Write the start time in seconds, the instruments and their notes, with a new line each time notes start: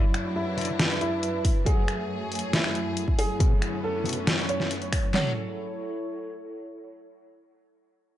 Already playing: string section F#2 F#3 D4 E4, ambient pad A3 E4 F#4 C#5, felt piano E4
0.08 ambient pad B4
0.14 finger snap, closed hi-hat
0.36 felt piano E4
0.57 distorted electric guitar D4 A4 D5, closed hi-hat, open hi-hat
0.65 closed hi-hat
0.71 ambient pad E5
0.79 snare, closed hi-hat
1.01 felt piano E4, closed hi-hat
1.23 closed hi-hat
1.45 kick, open hi-hat
1.66 string section F#3 A3 G#4, ambient pad F#3, distorted electric guitar F#4 C#5 F#5, felt piano G#4, kick, closed hi-hat
1.88 ambient pad C#5, finger snap, closed hi-hat
2.12 ambient pad E4
2.27 ambient pad A3
2.32 closed hi-hat, open hi-hat
2.39 closed hi-hat
2.53 felt piano E4, snare, closed hi-hat
2.64 finger snap
2.75 closed hi-hat
2.97 closed hi-hat
3.08 kick
3.19 felt piano G#4, open hi-hat
3.40 string section D3 B3 C#4, distorted electric guitar B3 F#4 B4, kick, closed hi-hat
3.62 finger snap, closed hi-hat
3.84 felt piano A4
3.89 ambient pad C#6
4.05 distorted electric guitar B3 F#4 B4, closed hi-hat, open hi-hat
4.13 closed hi-hat
4.27 snare, closed hi-hat
4.49 felt piano C#5, closed hi-hat
4.60 snare
4.71 closed hi-hat
4.82 closed hi-hat
4.92 finger snap, kick, open hi-hat
5.14 string section F#3 C#4 G#4 A4, ambient pad E4, distorted electric guitar F#4 C#5 F#5, felt piano C#5, snare, clap, floor tom
5.21 ambient pad A4
5.27 ambient pad C#5